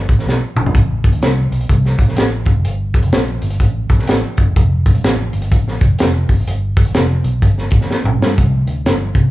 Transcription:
0.09 fingered electric bass A1, kick, closed hi-hat
0.19 snare
0.26 fingered electric bass B1, snare
0.56 fingered electric bass A1, mid tom
0.65 fingered electric bass B1, floor tom
0.74 fingered electric bass A1, kick, closed hi-hat
1.04 kick, closed hi-hat
1.12 fingered electric bass D2, closed hi-hat
1.22 fingered electric bass C2, snare, closed hi-hat
1.51 fingered electric bass B1, closed hi-hat
1.61 closed hi-hat
1.69 fingered electric bass C2, kick, closed hi-hat
1.85 snare
1.98 fingered electric bass A1, kick, closed hi-hat
2.08 snare
2.16 fingered electric bass A1, snare, closed hi-hat
2.45 kick, closed hi-hat
2.55 fingered electric bass F1
2.65 fingered electric bass G1, closed hi-hat
2.94 kick, closed hi-hat
3.03 fingered electric bass F1, closed hi-hat
3.12 fingered electric bass A#1, snare, closed hi-hat
3.42 fingered electric bass G1, closed hi-hat
3.50 closed hi-hat
3.60 fingered electric bass A1, kick, closed hi-hat
3.89 fingered electric bass A#1, kick, closed hi-hat
3.99 snare
4.07 fingered electric bass A1, snare, closed hi-hat
4.37 fingered electric bass G1, kick, closed hi-hat
4.46 fingered electric bass F#1
4.56 fingered electric bass F1, kick, closed hi-hat
4.86 kick, closed hi-hat
4.94 fingered electric bass B1, closed hi-hat
5.04 fingered electric bass A1, snare, closed hi-hat
5.33 fingered electric bass G1, closed hi-hat
5.42 closed hi-hat
5.51 fingered electric bass A1, kick, closed hi-hat
5.68 snare
5.81 fingered electric bass F1, kick, closed hi-hat
5.99 fingered electric bass F1, snare, closed hi-hat
6.29 fingered electric bass G#1, kick, open hi-hat
6.47 fingered electric bass G1, closed hi-hat
6.77 kick, closed hi-hat
6.85 fingered electric bass G1, closed hi-hat
6.94 fingered electric bass F1, snare, closed hi-hat
7.24 fingered electric bass B1, closed hi-hat
7.42 fingered electric bass G1, kick, closed hi-hat
7.58 snare
7.71 fingered electric bass A1, kick, closed hi-hat
7.81 snare
7.89 muted fingered electric bass stroke, snare
8.04 fingered electric bass B1, mid tom
8.19 fingered electric bass G2, snare
8.38 fingered electric bass C2, kick, closed hi-hat
8.67 fingered electric bass D2, closed hi-hat
8.85 fingered electric bass G1, snare, closed hi-hat
9.15 fingered electric bass C3, kick, closed hi-hat

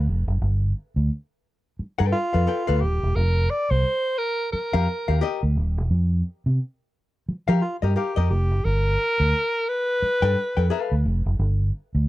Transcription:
0.07 fingered electric bass F1
0.28 fingered electric bass F#1
0.41 fingered electric bass G1
0.96 fingered electric bass D2
1.79 muted fingered electric bass stroke
1.99 fingered electric bass G2, hollow-body jazz guitar A4 B4 G5
2.12 alto saxophone F4
2.33 fingered electric bass F2, hollow-body jazz guitar A4 B4 F5
2.47 hollow-body jazz guitar A4 B4 G5
2.67 fingered electric bass D2, hollow-body jazz guitar A4 B4 F5
2.81 fingered electric bass D#1, alto saxophone G4
3.03 fingered electric bass E1
3.16 fingered electric bass F1, alto saxophone A#4
3.50 alto saxophone D5
3.71 fingered electric bass C2, alto saxophone C5
4.18 alto saxophone A#4
4.52 alto saxophone A#4, muted fingered electric bass stroke
4.73 fingered electric bass F2, hollow-body jazz guitar G4 A#4 F5
5.08 fingered electric bass D#2, hollow-body jazz guitar G4 A#4 F5
5.21 hollow-body jazz guitar G4 A#4 D#5
5.43 fingered electric bass D2
5.57 fingered electric bass D#1
5.78 fingered electric bass E1
5.91 fingered electric bass F2
6.46 fingered electric bass C3
7.29 muted fingered electric bass stroke
7.48 fingered electric bass F3, hollow-body jazz guitar G4 A#4 F5
7.62 alto saxophone F4
7.82 fingered electric bass G2, hollow-body jazz guitar G4 A#4 D#5
7.96 hollow-body jazz guitar G4 A#4 F5, alto saxophone G4
8.16 fingered electric bass F2, hollow-body jazz guitar G4 A#4 D#5
8.30 fingered electric bass F1, alto saxophone G4
8.51 fingered electric bass F#1
8.65 fingered electric bass G1, alto saxophone A#4
9.20 fingered electric bass D2
9.69 alto saxophone B4
10.02 muted fingered electric bass stroke
10.22 fingered electric bass G2, hollow-body jazz guitar A4 B4 G5
10.57 fingered electric bass F2, hollow-body jazz guitar A4 B4 G5
10.70 hollow-body jazz guitar A4 B4 F5
10.92 fingered electric bass D2
11.05 fingered electric bass F1
11.26 fingered electric bass F#1
11.39 fingered electric bass G1
11.95 fingered electric bass D2

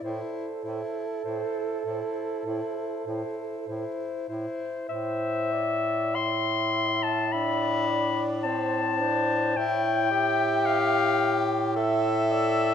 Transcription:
0.03 bass clarinet A2, tenor saxophone E4, alto saxophone A4, clarinet C5
0.64 bass clarinet A2, tenor saxophone E4, clarinet C5
1.24 bass clarinet A2, tenor saxophone E4, clarinet C5
1.85 bass clarinet A2, tenor saxophone E4, clarinet C5
2.45 bass clarinet A2, tenor saxophone E4, clarinet C5
3.06 bass clarinet A2, tenor saxophone E4, clarinet C5
3.68 bass clarinet A2, tenor saxophone E4, clarinet C5
4.28 bass clarinet A2, tenor saxophone E4, clarinet C5
4.89 bass clarinet A2, alto saxophone C5, clarinet E5
5.52 alto saxophone D5
6.15 alto saxophone E5, clarinet C6
7.03 clarinet A5
7.33 tenor saxophone D4, alto saxophone E5, clarinet B5
7.89 alto saxophone D5
8.44 tenor saxophone C4, alto saxophone C5, clarinet A5
9.01 tenor saxophone D4, alto saxophone C5
9.56 bass clarinet A2, tenor saxophone E4, alto saxophone C#5, clarinet G5
10.11 tenor saxophone G4, alto saxophone E5
10.66 clarinet F5
11.76 tenor saxophone A4, clarinet E5, alto saxophone E5
12.31 alto saxophone D5

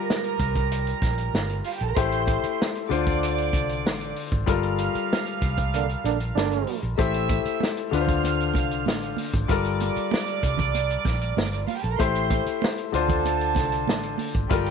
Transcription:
Already playing: grand piano G3 F4 G4 A#4, violin section A#4 A#5
0.10 snare
0.24 closed hi-hat
0.40 fingered electric bass C2, kick, closed hi-hat
0.56 kick, closed hi-hat
0.72 closed hi-hat
0.87 closed hi-hat
1.02 fingered electric bass A#1, kick, snare, closed hi-hat
1.18 closed hi-hat
1.34 fingered electric bass G1, snare
1.49 closed hi-hat
1.64 violin section F4 F5, open hi-hat
1.73 violin section G4 G5
1.80 fingered electric bass A#1, violin section A4 A5, closed hi-hat
1.89 violin section A#4 A#5
1.96 fingered electric bass A1, grand piano A3 E4 G4 C5, violin section C5 C6, kick, closed hi-hat
2.12 closed hi-hat
2.27 kick, closed hi-hat
2.44 muted fingered electric bass stroke, closed hi-hat
2.62 snare
2.75 closed hi-hat
2.89 fingered electric bass D2, grand piano D3 D4 F4 C5, violin section D5 D6, closed hi-hat
3.07 kick, closed hi-hat
3.23 closed hi-hat
3.38 closed hi-hat
3.53 fingered electric bass C2, kick, closed hi-hat
3.69 closed hi-hat
3.85 fingered electric bass A1, snare
4.01 closed hi-hat
4.16 open hi-hat
4.32 fingered electric bass G#1, kick, closed hi-hat
4.46 fingered electric bass G1, grand piano G3 F4 A4 A#4, violin section F5 F6, kick, closed hi-hat
4.63 closed hi-hat
4.78 closed hi-hat
4.95 muted fingered electric bass stroke, closed hi-hat
5.13 snare
5.26 closed hi-hat
5.42 fingered electric bass C2, kick, closed hi-hat
5.58 kick, closed hi-hat
5.73 trombone section D3 A#3 D4, closed hi-hat
5.89 closed hi-hat
6.04 fingered electric bass A#1, trombone section D3 A#3 D4, closed hi-hat
6.20 closed hi-hat
6.35 fingered electric bass G1, trombone section D3 A#3 D4, snare
6.51 closed hi-hat
6.67 open hi-hat
6.83 fingered electric bass A#1, closed hi-hat
6.98 fingered electric bass A1, grand piano A3 E4 G4 C5, violin section E5 E6, kick, closed hi-hat
7.14 closed hi-hat
7.29 kick, closed hi-hat, muted conga
7.45 muted fingered electric bass stroke, closed hi-hat
7.60 snare, high conga
7.77 closed hi-hat
7.91 fingered electric bass D2, grand piano D3 D4 F4 B4, violin section F5 F6, closed hi-hat
8.01 grand piano C5
8.07 kick, closed hi-hat, low conga
8.24 closed hi-hat, muted conga
8.40 closed hi-hat
8.54 fingered electric bass C2, kick, closed hi-hat, muted conga
8.71 closed hi-hat
8.86 fingered electric bass A1, snare, high conga
9.02 closed hi-hat
9.17 open hi-hat, high conga
9.34 fingered electric bass G#1, kick, closed hi-hat
9.48 fingered electric bass G1, grand piano G3 F4 A4 A#4, violin section D5 D6, kick, closed hi-hat
9.65 closed hi-hat
9.80 closed hi-hat, muted conga
9.96 muted fingered electric bass stroke, closed hi-hat
10.11 snare, high conga
10.28 closed hi-hat
10.43 fingered electric bass C2, kick, closed hi-hat
10.57 kick, closed hi-hat, low conga
10.75 closed hi-hat, muted conga
10.90 closed hi-hat
11.05 fingered electric bass A#1, kick, snare, closed hi-hat, muted conga
11.21 closed hi-hat
11.37 fingered electric bass G1, snare, high conga
11.53 closed hi-hat
11.67 violin section F4 F5, open hi-hat, high conga
11.76 violin section G4 G5
11.84 fingered electric bass A#1, violin section A4 A5, closed hi-hat
11.92 violin section A#4 A#5
11.99 fingered electric bass A1, grand piano A3 E4 G4 C5, violin section C5 C6, kick, closed hi-hat, muted conga
12.15 closed hi-hat
12.30 kick, closed hi-hat, muted conga
12.46 muted fingered electric bass stroke, closed hi-hat
12.62 snare, high conga
12.78 closed hi-hat
12.92 fingered electric bass D2, grand piano D3 D4 F4 C5, violin section A4 A5, closed hi-hat
13.08 kick, closed hi-hat, low conga
13.25 closed hi-hat, muted conga
13.41 closed hi-hat
13.55 fingered electric bass C2, kick, snare, closed hi-hat, muted conga
13.72 closed hi-hat
13.88 fingered electric bass A1, snare, high conga
14.03 closed hi-hat
14.18 open hi-hat, high conga
14.34 fingered electric bass G#1, kick, closed hi-hat
14.49 fingered electric bass G1, grand piano G3 F4 A4 A#4, violin section G4 G5, kick, closed hi-hat
14.66 closed hi-hat

